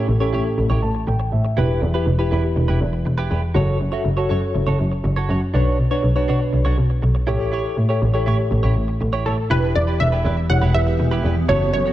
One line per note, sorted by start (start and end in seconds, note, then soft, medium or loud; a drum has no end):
0.00 0.11 C#4 medium
0.00 0.11 G4 medium
0.00 0.11 A4 medium
0.08 0.25 A1 loud
0.08 muted clean electric guitar stroke soft
0.20 0.80 C#4 medium
0.20 0.32 E4 soft
0.20 0.80 G4 medium
0.20 0.32 G4 medium
0.20 0.80 A4 medium
0.20 0.32 C#5 medium
0.33 0.49 A2 medium
0.33 0.47 E4 medium
0.33 0.45 G4 medium
0.33 0.44 C#5 medium
0.45 muted clean electric guitar stroke soft
0.58 0.66 A1 loud
0.58 muted clean electric guitar stroke soft
0.70 0.78 A1 loud
0.70 0.81 E4 medium
0.70 0.82 G4 medium
0.70 0.83 C#5 medium
0.82 0.99 A2 loud
0.82 1.06 A5 medium
0.82 muted clean electric guitar stroke medium
0.95 muted clean electric guitar stroke soft
1.07 1.24 A1 medium
1.07 1.31 G5 medium
1.07 muted clean electric guitar stroke soft
1.20 muted clean electric guitar stroke soft
1.32 1.48 A2 medium
1.32 1.56 E5 medium
1.45 muted clean electric guitar stroke soft
1.57 1.73 E1 loud
1.57 1.80 E4 medium
1.57 1.79 E4 medium
1.57 1.79 G4 medium
1.57 1.80 G4 medium
1.57 1.80 B4 medium
1.57 1.81 B4 medium
1.82 1.98 E2 loud
1.82 muted clean electric guitar stroke soft
1.94 2.09 E4 medium
1.94 2.05 E4 medium
1.94 2.09 G4 medium
1.94 2.06 G4 medium
1.94 2.05 B4 medium
1.94 2.09 B4 medium
2.07 2.23 E1 loud
2.07 muted clean electric guitar stroke soft
2.19 2.78 E4 medium
2.19 2.30 E4 soft
2.19 2.78 G4 medium
2.19 2.31 G4 medium
2.19 2.30 B4 medium
2.19 2.78 B4 medium
2.31 2.48 E2 medium
2.31 2.46 E4 medium
2.31 2.44 G4 medium
2.31 2.42 B4 medium
2.44 muted clean electric guitar stroke soft
2.56 2.64 E1 loud
2.56 muted clean electric guitar stroke soft
2.68 2.77 E1 medium
2.68 2.79 E4 medium
2.68 2.80 G4 medium
2.68 2.81 B4 medium
2.81 2.97 E2 loud
2.81 muted clean electric guitar stroke soft
2.93 muted clean electric guitar stroke soft
3.05 3.30 E1 medium
3.05 muted clean electric guitar stroke soft
3.18 3.29 E4 medium
3.18 3.30 G4 medium
3.18 3.31 B4 medium
3.30 3.47 E2 medium
3.30 3.42 E4 medium
3.30 3.42 G4 medium
3.30 3.41 B4 medium
3.43 muted clean electric guitar stroke soft
3.55 3.72 F#1 loud
3.55 3.78 F#4 medium
3.55 3.77 F#4 medium
3.55 3.78 A4 medium
3.55 3.79 A4 medium
3.55 3.78 C#5 medium
3.55 3.79 C#5 loud
3.80 3.97 F#2 medium
3.80 muted clean electric guitar stroke soft
3.92 4.07 F#4 medium
3.92 4.03 F#4 medium
3.92 4.08 A4 medium
3.92 4.04 A4 medium
3.92 4.04 C#5 medium
3.92 4.08 E5 medium
4.05 4.21 F#1 loud
4.05 muted clean electric guitar stroke soft
4.17 4.76 F#4 medium
4.17 4.28 F#4 medium
4.17 4.77 A4 medium
4.17 4.29 A4 medium
4.17 4.29 C#5 medium
4.17 4.77 C#5 medium
4.29 4.46 F#2 medium
4.29 4.44 F#4 medium
4.29 4.42 A4 medium
4.29 4.41 C#5 medium
4.42 muted clean electric guitar stroke soft
4.55 4.63 F#1 loud
4.55 muted clean electric guitar stroke soft
4.67 4.75 F#1 medium
4.67 4.78 F#4 medium
4.67 4.79 A4 medium
4.67 4.79 C#5 medium
4.79 4.96 F#2 medium
4.79 muted clean electric guitar stroke soft
4.92 muted clean electric guitar stroke medium
5.04 5.20 F#1 loud
5.04 muted clean electric guitar stroke soft
5.16 5.27 F#4 medium
5.16 5.28 A4 medium
5.16 5.29 C#5 medium
5.29 5.45 F#2 loud
5.29 5.40 F#4 medium
5.29 5.41 A4 medium
5.29 5.40 C#5 medium
5.41 muted clean electric guitar stroke soft
5.53 5.70 B1 loud
5.53 5.77 D4 medium
5.53 5.76 D4 medium
5.53 5.77 F#4 medium
5.53 5.76 B4 medium
5.53 5.76 C#5 medium
5.53 5.77 C#5 medium
5.78 5.95 B2 medium
5.78 muted clean electric guitar stroke soft
5.91 6.06 D4 medium
5.91 6.02 D4 medium
5.91 6.03 F#4 medium
5.91 6.06 B4 medium
5.91 6.02 C#5 medium
5.91 6.06 C#5 medium
6.03 6.20 B1 loud
6.03 muted clean electric guitar stroke soft
6.16 6.75 D4 medium
6.16 6.27 D4 soft
6.16 6.27 F#4 medium
6.16 6.75 B4 medium
6.16 6.27 C#5 medium
6.16 6.75 C#5 medium
6.28 6.44 B2 medium
6.28 6.42 D4 medium
6.28 6.40 F#4 loud
6.28 6.39 C#5 loud
6.40 muted clean electric guitar stroke soft
6.53 6.61 B1 medium
6.53 muted clean electric guitar stroke soft
6.65 6.73 B1 loud
6.65 6.76 D4 medium
6.65 6.77 F#4 medium
6.65 6.78 C#5 medium
6.78 6.94 B2 loud
6.78 muted clean electric guitar stroke soft
6.90 muted clean electric guitar stroke soft
7.02 7.19 B1 loud
7.02 muted clean electric guitar stroke soft
7.15 muted clean electric guitar stroke soft
7.27 7.60 A1 medium
7.27 7.40 E4 medium
7.27 7.77 G4 medium
7.27 7.39 G4 medium
7.27 7.77 A4 medium
7.27 7.77 C#5 loud
7.27 7.38 C#5 medium
7.39 7.50 E4 medium
7.39 7.51 G4 medium
7.39 7.51 C#5 medium
7.52 7.75 E4 medium
7.52 7.75 G4 medium
7.52 7.76 C#5 loud
7.77 7.93 A2 loud
7.77 muted clean electric guitar stroke soft
7.89 8.00 E4 soft
7.89 8.04 G4 medium
7.89 8.01 G4 medium
7.89 8.04 A4 medium
7.89 8.00 C#5 medium
7.89 8.04 C#5 medium
8.01 8.18 A1 loud
8.01 muted clean electric guitar stroke soft
8.14 8.25 E4 medium
8.14 8.73 G4 medium
8.14 8.26 G4 medium
8.14 8.73 A4 medium
8.14 8.25 C#5 medium
8.14 8.73 C#5 loud
8.26 8.43 A2 medium
8.26 8.41 E4 medium
8.26 8.39 G4 medium
8.26 8.37 C#5 loud
8.39 muted clean electric guitar stroke soft
8.51 8.60 A1 loud
8.51 muted clean electric guitar stroke soft
8.63 8.72 A1 medium
8.63 8.75 E4 medium
8.63 8.75 G4 medium
8.63 8.76 C#5 medium
8.76 8.92 A2 loud
8.76 muted clean electric guitar stroke soft
8.88 muted clean electric guitar stroke soft
9.01 9.17 A1 loud
9.01 muted clean electric guitar stroke soft
9.13 9.24 E4 medium
9.13 9.25 G4 medium
9.13 9.26 C#5 medium
9.25 9.42 A2 medium
9.25 9.37 E4 medium
9.25 9.37 G4 medium
9.25 9.51 A4 medium
9.25 9.37 C#5 medium
9.38 muted clean electric guitar stroke soft
9.50 9.67 E1 loud
9.50 11.47 E3 medium
9.50 11.47 B3 medium
9.50 9.73 E4 medium
9.50 10.09 E4 medium
9.50 11.47 G4 medium
9.50 10.10 G4 medium
9.50 9.74 G4 medium
9.50 9.76 B4 loud
9.50 10.10 B4 medium
9.50 9.74 B4 loud
9.75 9.92 E2 loud
9.75 10.01 D5 loud
9.75 muted clean electric guitar stroke soft
9.87 9.99 E4 medium
9.87 9.99 G4 medium
9.87 9.99 B4 medium
10.00 10.16 E1 loud
10.00 10.51 E5 loud
10.00 muted clean electric guitar stroke soft
10.12 10.23 E4 soft
10.12 10.24 G4 medium
10.12 10.24 B4 medium
10.24 10.41 E2 loud
10.24 10.39 E4 medium
10.24 10.37 G4 medium
10.24 10.36 B4 medium
10.37 muted clean electric guitar stroke soft
10.50 10.58 E1 loud
10.50 10.64 E4 medium
10.50 10.65 G4 medium
10.50 10.65 C#5 medium
10.50 10.75 F#5 loud
10.50 muted clean electric guitar stroke soft
10.62 10.70 E1 medium
10.62 10.73 E4 medium
10.62 10.74 G4 medium
10.62 10.74 B4 medium
10.74 10.91 E2 medium
10.74 11.19 E4 medium
10.74 11.19 G4 medium
10.74 11.19 B4 medium
10.74 11.51 E5 loud
10.74 muted clean electric guitar stroke soft
10.87 muted clean electric guitar stroke soft
10.99 11.24 E1 medium
10.99 muted clean electric guitar stroke soft
11.11 11.23 E4 medium
11.11 11.24 G4 medium
11.11 11.24 B4 medium
11.24 11.40 E2 loud
11.24 11.35 E4 medium
11.24 11.36 G4 medium
11.24 11.35 B4 medium
11.36 muted clean electric guitar stroke soft
11.48 11.65 F#1 loud
11.48 11.93 F#3 medium
11.48 11.72 F#4 medium
11.48 11.93 F#4 medium
11.48 11.93 A4 medium
11.48 11.72 A4 medium
11.48 11.72 C#5 loud
11.48 11.93 C#5 medium
11.48 11.72 C#5 loud
11.74 11.90 F#2 medium
11.74 11.93 C#5 loud
11.86 11.93 F#4 soft
11.86 11.93 A4 medium
11.86 11.93 C#5 medium